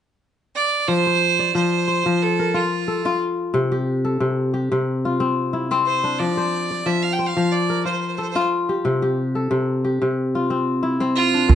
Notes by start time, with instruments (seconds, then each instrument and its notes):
0.55 fiddle D5
0.87 kora F3, fiddle C5
1.06 kora C5
1.39 kora D5
1.55 kora F3, fiddle C5
1.88 kora C5
2.06 kora F3
2.22 fiddle A4
2.39 kora A#4
2.54 kora F4, fiddle F4
2.88 kora A4
3.06 kora F4
3.54 kora C3
3.72 kora G4
4.05 kora A4
4.20 kora C3
4.54 kora G4
4.72 kora C3
5.05 kora F4
5.20 kora C4
5.53 kora E4
5.71 kora C4
5.86 fiddle C5
6.04 kora D4
6.19 kora F3, fiddle D5
6.37 kora C5
6.71 kora D5
6.86 kora F3, fiddle E5
7.02 fiddle F5
7.12 fiddle G5
7.19 kora C5
7.26 fiddle F5
7.37 kora F3
7.52 fiddle D5
7.70 kora A#4
7.85 kora F4, fiddle C5
7.92 fiddle C5
8.01 fiddle C5
8.08 fiddle C5
8.16 kora A4, fiddle C5
8.22 fiddle C5
8.30 fiddle C5
8.36 kora F4, fiddle C5
8.69 kora G4
8.85 kora C3
9.02 kora G4
9.35 kora A4
9.51 kora C3
9.84 kora G4
10.02 kora C3
10.35 kora F4
10.50 kora C4
10.83 kora E4
11.00 kora C4
11.16 fiddle F4
11.34 kora D4
11.49 kora A#2, calabash thump, calabash click